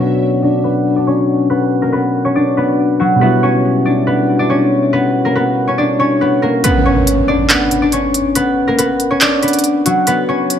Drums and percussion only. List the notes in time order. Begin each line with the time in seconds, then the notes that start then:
6.64 closed hi-hat
7.07 closed hi-hat
7.50 clap, closed hi-hat
7.71 closed hi-hat
7.92 closed hi-hat
8.14 closed hi-hat
8.35 closed hi-hat
8.79 closed hi-hat
9.00 closed hi-hat
9.21 clap, closed hi-hat
9.43 closed hi-hat
9.48 closed hi-hat
9.53 closed hi-hat
9.59 closed hi-hat
9.64 closed hi-hat
9.86 closed hi-hat
10.07 closed hi-hat
10.50 closed hi-hat